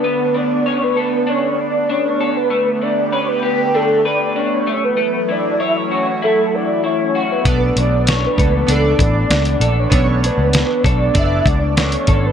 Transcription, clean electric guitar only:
X:1
M:4/4
L:1/8
Q:1/4=97
K:Bm
V:1 name="Clean electric guitar"
[B,DA] D c A D2 D A | A, D B G D B D A, | A, E c F E2 E F | B, D c A D2 D A |
B, D2 A D2 D A |]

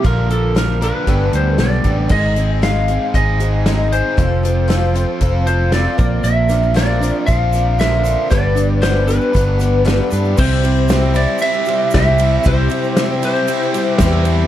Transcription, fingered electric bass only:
X:1
M:4/4
L:1/8
Q:1/4=116
K:C
V:1 name="Fingered electric bass" clef=bass
_B,,,4 G,,, D,, =B,,, A,,, | _A,,,4 A,,,4 | F,,,4 F,,,3 _B,,, | _B,,,4 B,,,4 |
G,,,4 G,,,3 G,, | C,,4 z2 C,,2 | C,, z4 z E,,2 |]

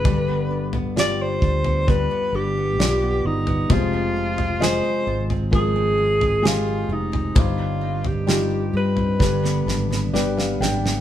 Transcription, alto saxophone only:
X:1
M:4/4
L:1/16
Q:1/4=66
K:Gphr
V:1 name="Alto saxophone"
=B3 z d c3 B2 G4 E2 | F4 c3 z A4 F2 E2 | F3 G3 =B6 z4 |]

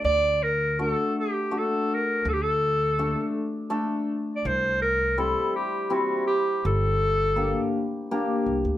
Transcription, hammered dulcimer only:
X:1
M:3/4
L:1/8
Q:1/4=82
K:none
V:1 name="Hammered dulcimer"
z2 [A,D^F] z [A,DF] z | z2 [A,DA] z [A,DA] z | z2 [G,CE] z [G,CE] z | z2 [_B,DG] z [B,DG] z |]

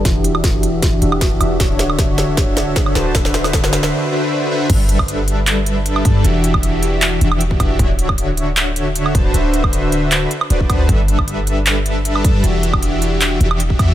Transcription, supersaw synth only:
X:1
M:4/4
L:1/8
Q:"Swing 16ths" 1/4=155
K:D
V:1 name="Supersaw synth"
[E,DFGe]4- [E,DFGe] [E,DFGe]2 [E,DFGe] | [D,DFce]6- [D,DFce] [D,DFB=ca] | [D,DFB=ce]4- [D,DFBce] [D,DFBce]2 [D,DFBce] | [G,DABe]6- [G,DABe] [G,DABa] |
[E,DFGe]4- [E,DFGe] [E,DFGe]2 [E,DFGe] | [D,DFce]6- [D,DFce] [D,DFB=ca] | [D,DFB=ce]4- [D,DFBce] z [D,DFBcd] [D,DFBca] | [G,DABe]6- [G,DABe] [G,DABa] |
[E,DFGe]4- [E,DFGe] [E,DFGe]2 [E,DFGe] |]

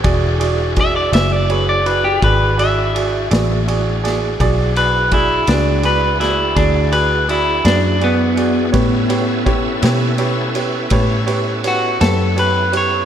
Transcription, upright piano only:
X:1
M:12/8
L:1/8
Q:3/8=55
K:Emix
V:1 name="Upright piano"
[FGd] [FGd] [FGd] [FGd] [FGc] [FGd] [FGd] [FGd] [FGd] [FGd] [FGd] [FGd] | [FGd] [FGd] [FGd] [FGd] [FGd] [FGd] [FGd] [FGd] [FGd] [FGd] [FGd] [FGd] | [=GBc] [GBc] [GBc] [GBc] [GBc] [GBc] [GBc] [GBc] [GBc] [GBc] [GBc] [GBc] |]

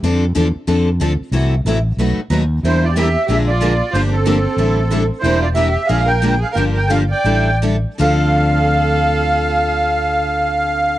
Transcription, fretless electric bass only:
X:1
M:4/4
L:1/8
Q:"Swing" 1/4=184
K:Dm
V:1 name="Fretless electric bass" clef=bass
F,,2 E,, z F,,2 D,, z | C,,2 A,,,2 =B,,, z ^D,,2 | E,,4 B,,,4 | G,,,4 A,,,4 |
E,,,4 B,,,4 | G,,,4 A,,,4 | D,,8- | D,,8 |]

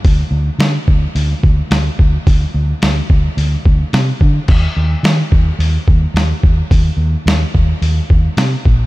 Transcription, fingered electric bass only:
X:1
M:4/4
L:1/8
Q:1/4=108
K:Eblyd
V:1 name="Fingered electric bass" clef=bass
D,, D,, D, D,, D,, D,, D,, D,, | D,, D,, D,, D,, D,, D,, C, D, | E,, E,, E, E,, E,, E,, E,, E,, | E,, E,, E,, E,, E,, E,, C, B,,, |]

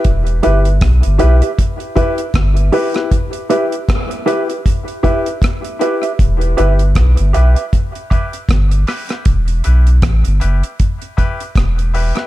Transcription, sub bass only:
X:1
M:4/4
L:1/16
Q:"Swing 16ths" 1/4=78
K:Em
V:1 name="Sub bass" clef=bass
E,,,2 G,,,2 B,,, G,,, B,,, z4 z G,,,2 z2 | z16 | E,,,2 G,,,2 B,,, G,,, B,,, z4 z G,,,2 z2 | E,,,2 B,,,2 A,,, G,,, F,,, z4 z E,,,3 z |]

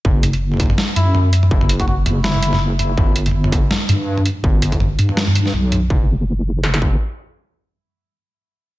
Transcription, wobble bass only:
X:1
M:4/4
L:1/8
Q:"Swing 16ths" 1/4=164
K:Edor
V:1 name="Wobble bass" clef=bass
F,,,4 z F,,3 | F,,,3 F,,,4- F,,, | G,,,4 z G,,3 | G,,,3 G,,3 B,,,2 |
F,,,6 z2 | z8 |]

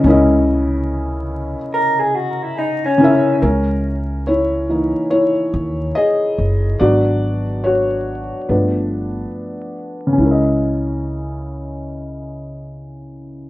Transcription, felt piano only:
X:1
M:4/4
L:1/8
Q:"Swing 16ths" 1/4=71
K:C#dor
V:1 name="Felt piano"
[C,CEAd]3 z4 [C,CEAe] | [CA]2 [Ec]2 [Ec]2 [Gd]2 | [F=d]2 [Fc]2 [=DB]3 z | [C,CEAd]8 |]
V:2 name="Felt piano"
z8 | z3 [E,A,D] z4 | [F,B,=D] z3 [=F,=A,B,]4 | z8 |]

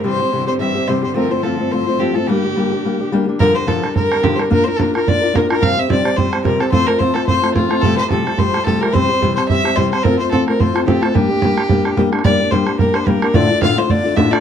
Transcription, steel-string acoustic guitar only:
X:1
M:4/4
L:1/8
Q:"Swing" 1/4=217
K:Gdor
V:1 name="Steel-string acoustic guitar"
[C,E,G,CG] [G,CG] [C,E,G,CG] [G,CG] [E,G,CG] [G,CG] [C,E,G,CG] [G,CG] | [F,A,CF] [A,CF] [F,A,CF] [A,CF] [F,A,CF] [A,CF] [F,A,CF] [A,CF] | [G,B,DG] [B,DG] [G,B,DG] [B,DG] [G,B,DG] [B,DG] [G,B,DG] [B,DG] | [G,,D,F,G,DB] [D,G,DB] [G,,D,F,G,DB] [D,G,DB] [D,G,DB] [D,G,DB] [G,,D,F,G,DB] [D,G,DB] |
[B,DFB] [DFB] [B,DFB] [DFB] [B,DFB] [DFB] [B,DFB] [DFB] | [C,F,G,CG] [G,CG] [C,F,G,CG] [G,CG] [F,G,CG] [G,CG] [C,F,G,CG] [G,CG] | [F,A,CF] [A,CF] [F,A,CF] [A,CF] [F,A,CF] [A,CF] [F,A,CF] [A,CF] | [F,,C,F,G,A,G] [F,G,A,G] [F,,C,F,G,A,G] [F,G,A,G] [F,G,A,G] [F,G,A,G] [F,,C,F,G,A,G] [F,G,A,G] |
[C,E,G,CG] [G,CG] [C,E,G,CG] [G,CG] [E,G,CG] [G,CG] [C,E,G,CG] [G,CG] | [F,A,CF] [A,CF] [F,A,CF] [A,CF] [F,A,CF] [A,CF] [F,A,CF] [A,CF] | [G,B,DG] [B,DG] [G,B,DG] [B,DG] [G,B,DG] [B,DG] [G,B,DG] [B,DG] | [G,B,DG] [B,DG] [G,B,DG] [B,DG] [G,B,DG] [B,DG] [G,B,DG] [B,DG] |
[D,,A,,D,A,DF] [D,A,DF] [D,,A,,D,A,DF] [D,A,DF] [D,A,DF] [D,A,DF] [D,,A,,D,A,DF] [D,A,DF] |]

